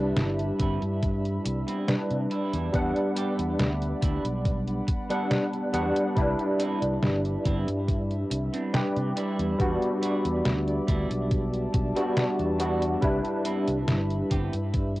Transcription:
Already playing: C2 G3 D4 E4 B4 E5 B5
0.16 G1, snare, closed hi-hat
0.39 closed hi-hat
0.59 G1 B3 C4 E4, kick, closed hi-hat
0.82 G2, closed hi-hat
1.02 kick, closed hi-hat
1.25 closed hi-hat
1.44 C2, muted clean electric guitar stroke, closed hi-hat
1.67 B3 C4 E4, closed hi-hat
1.87 G3 D4 B4, snare, closed hi-hat
2.10 C3, closed hi-hat
2.30 G3 D4 E4 D5 E5 B5, closed hi-hat
2.53 E2, closed hi-hat
2.72 E2 G3 B3 D4 F#5, kick, closed hi-hat
2.96 closed hi-hat
3.16 G3 D4 G4, closed hi-hat
3.39 E2, closed hi-hat
3.60 D2, snare, closed hi-hat
3.82 closed hi-hat
4.01 D2 G3 D4 E4 F#5, kick, closed hi-hat
4.25 B1, closed hi-hat
4.45 kick, closed hi-hat
4.68 closed hi-hat
4.87 muted clean electric guitar stroke, kick, closed hi-hat
5.10 G3 B3 D4 E4 F#5, closed hi-hat
5.31 snare, closed hi-hat
5.53 closed hi-hat
5.73 E2 G3 B3 D4 F#4 F#5, closed hi-hat
5.96 closed hi-hat
6.15 C2 G3 D4 E4 B4 E5, kick, closed hi-hat
6.39 closed hi-hat
6.59 B3 C4 E4, closed hi-hat
6.82 C2, closed hi-hat
7.03 G1, snare, closed hi-hat
7.25 closed hi-hat
7.44 G1 B3 C4 E4, kick, closed hi-hat
7.68 G2, closed hi-hat
7.88 kick, closed hi-hat
8.11 closed hi-hat
8.30 C2, muted clean electric guitar stroke, closed hi-hat
8.53 B3 C4 D4, closed hi-hat
8.73 G3 D4 G4 B4, snare, closed hi-hat
8.96 C3, closed hi-hat
9.16 G3 D4 E4 D5 B5, closed hi-hat
9.39 E2, closed hi-hat
9.58 E2 G3 B3 D4 F#4, kick, closed hi-hat
9.82 closed hi-hat
10.02 G3 D4 F#4, closed hi-hat
10.25 E2, closed hi-hat
10.45 D2, snare, closed hi-hat
10.68 closed hi-hat
10.87 D2 G3 D4 E4 A5, kick, closed hi-hat
11.11 B1, closed hi-hat
11.31 kick, closed hi-hat
11.54 closed hi-hat
11.73 B1, muted clean electric guitar stroke, kick, closed hi-hat
11.95 G3 B3 D4 E4 F#4, closed hi-hat
12.17 snare, closed hi-hat
12.39 E2, closed hi-hat
12.59 G3 B3 D4 E4 F#4, closed hi-hat
12.82 closed hi-hat
13.01 C2 G3 D4 E4 B4 B5, kick, closed hi-hat
13.25 closed hi-hat
13.44 B3 C4 E4, closed hi-hat
13.68 C2, closed hi-hat
13.88 G1, snare, closed hi-hat
14.10 closed hi-hat
14.30 G1 B3 C4 G4, kick, closed hi-hat
14.53 G2, closed hi-hat
14.74 kick, closed hi-hat
14.96 closed hi-hat

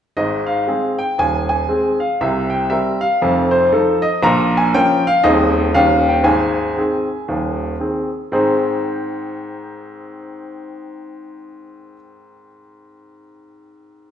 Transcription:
0.17 G#1 G#2 D#5
0.46 F5
0.67 G#3 C4 G#4
0.99 G5
1.18 D#1 D#2 G#5
1.49 G#5
1.68 G#3 C4 G#4
2.00 F5
2.21 C2 C3 E5
2.50 G5
2.70 G3 C4 A#4 E5
3.01 F5
3.22 F1 F2
3.51 C5
3.72 F3 D#4 A4
4.02 D#5
4.23 A#1 A#2 A#5
4.57 G#5
4.74 F3 C#4 A#4 G5
5.07 F5
5.24 D#1 D#2 D#3 C4 G#4 D#5
5.74 D#1 D#2 D#3 C#4 G4 F5
6.09 G5
6.23 G#1 G#2 G#5
6.77 D#3 C4 G#4
7.28 D#1 D#2
7.80 D#3 C4 G#4
8.32 G#2 D#3 C4 D#4 G#4 C5

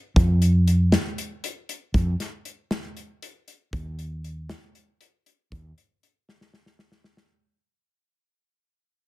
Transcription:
0.16 F2, kick, closed hi-hat
0.42 closed hi-hat
0.68 closed hi-hat
0.92 snare, closed hi-hat
1.18 closed hi-hat
1.44 closed hi-hat
1.69 closed hi-hat
1.94 F2, kick, closed hi-hat
2.20 snare, closed hi-hat
2.45 closed hi-hat
2.71 snare, closed hi-hat
2.97 closed hi-hat
3.22 closed hi-hat
3.48 closed hi-hat
3.73 D#2, kick, closed hi-hat
3.99 closed hi-hat
4.24 closed hi-hat
4.49 snare, closed hi-hat
4.75 closed hi-hat
5.01 closed hi-hat
5.26 closed hi-hat
5.52 D#2, kick, closed hi-hat
5.78 closed hi-hat
6.03 closed hi-hat
6.29 snare
6.41 snare
6.53 snare
6.66 snare
6.79 snare
6.92 snare
7.04 snare
7.17 snare

